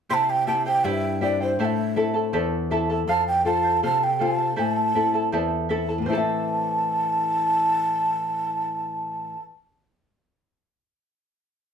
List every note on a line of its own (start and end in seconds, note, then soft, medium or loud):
0.09 0.83 C3 medium
0.09 0.46 E4 medium
0.09 0.47 G4 medium
0.09 0.47 C5 medium
0.09 0.46 E5 medium
0.09 0.47 G5 medium
0.09 0.15 C6 medium
0.14 0.31 A5 medium
0.30 0.47 G5 medium
0.47 1.07 C4 soft
0.47 0.66 E4 soft
0.47 1.07 E4 soft
0.47 1.07 G4 soft
0.47 0.65 C5 soft
0.47 0.66 E5 soft
0.47 0.65 G5 soft
0.47 0.65 A5 medium
0.66 0.84 E4 soft
0.66 0.84 C5 soft
0.66 0.84 G5 soft
0.66 0.86 G5 medium
0.84 1.57 G2 medium
0.84 1.21 E4 medium
0.84 1.22 G4 medium
0.84 1.21 C5 medium
0.84 1.20 E5 medium
0.84 1.22 E5 medium
0.84 1.21 G5 medium
1.21 1.51 C4 soft
1.21 1.52 E4 soft
1.21 1.41 E4 medium
1.21 1.52 G4 soft
1.21 1.41 C5 medium
1.21 1.40 D5 medium
1.21 1.40 E5 medium
1.21 1.39 G5 medium
1.41 1.59 E4 soft
1.41 1.58 C5 soft
1.41 1.59 C5 medium
1.41 1.59 G5 soft
1.59 2.31 A2 medium
1.59 1.96 E4 medium
1.59 1.96 A4 medium
1.59 1.97 C5 medium
1.59 1.95 E5 medium
1.59 1.66 G5 medium
1.59 1.96 A5 medium
1.65 2.31 E5 medium
1.96 2.56 C4 soft
1.96 2.15 E4 medium
1.96 2.56 E4 soft
1.96 2.56 A4 soft
1.96 2.14 A4 medium
1.96 2.15 E5 soft
1.96 2.13 A5 soft
2.14 2.32 E4 soft
2.14 2.32 A4 soft
2.14 2.33 A5 soft
2.33 3.06 E2 medium
2.33 2.70 E4 medium
2.33 2.71 A4 medium
2.33 2.71 C5 medium
2.33 2.70 E5 medium
2.33 2.71 A5 medium
2.70 3.01 C4 soft
2.70 3.01 E4 soft
2.70 2.90 E4 medium
2.70 3.01 A4 soft
2.70 2.89 A4 medium
2.70 2.90 E5 medium
2.70 2.88 A5 medium
2.90 3.09 E4 soft
2.90 3.06 A4 soft
2.90 3.08 A5 soft
3.07 3.80 F2 medium
3.07 3.44 A4 medium
3.07 3.45 C5 medium
3.07 3.45 F5 medium
3.07 3.26 A5 medium
3.28 3.45 G5 medium
3.45 4.05 C4 soft
3.45 4.05 F4 soft
3.45 3.64 A4 medium
3.45 4.06 A4 soft
3.45 3.63 C5 soft
3.45 3.62 F5 medium
3.45 3.81 A5 medium
3.63 3.82 C5 soft
3.63 3.82 F5 soft
3.83 4.56 C3 medium
3.83 4.18 A4 medium
3.83 4.19 C5 medium
3.83 4.19 F5 medium
3.83 4.05 A5 medium
4.03 4.24 G5 medium
4.19 4.51 C4 soft
4.19 4.51 F4 soft
4.19 4.38 A4 medium
4.19 4.51 A4 medium
4.19 4.38 C5 medium
4.19 4.37 F5 medium
4.19 4.58 A5 medium
4.38 4.55 C5 soft
4.38 4.56 F5 soft
4.56 5.31 A2 medium
4.56 4.94 E4 medium
4.56 4.95 A4 medium
4.56 4.94 C5 medium
4.56 4.94 E5 medium
4.56 4.71 G#5 medium
4.56 4.95 A5 medium
4.71 5.29 A5 medium
4.95 5.55 C4 soft
4.95 5.14 E4 soft
4.95 5.56 E4 soft
4.95 5.13 A4 medium
4.95 5.55 A4 soft
4.95 5.14 E5 soft
4.95 5.13 A5 medium
5.14 5.32 E4 soft
5.14 5.32 A4 soft
5.14 5.32 A5 medium
5.32 6.05 E2 medium
5.32 5.69 E4 medium
5.32 5.69 A4 medium
5.32 5.70 C5 medium
5.32 5.68 E5 medium
5.32 5.70 A5 medium
5.69 6.00 C4 soft
5.69 5.89 E4 medium
5.69 6.00 E4 soft
5.69 5.88 A4 medium
5.69 6.00 A4 soft
5.69 5.88 E5 medium
5.69 5.88 A5 medium
5.89 6.08 E4 soft
5.89 6.06 A4 soft
5.89 6.07 A5 soft
5.98 9.32 A2 soft
5.98 9.35 E3 soft
6.06 9.39 C4 soft
6.06 6.17 E4 soft
6.06 9.56 C5 medium
6.06 9.59 E5 medium
6.06 9.41 A5 medium
6.10 9.60 E4 medium
6.10 9.62 A4 medium
6.10 9.47 A4 soft
6.10 9.63 A5 medium
6.18 9.51 E5 medium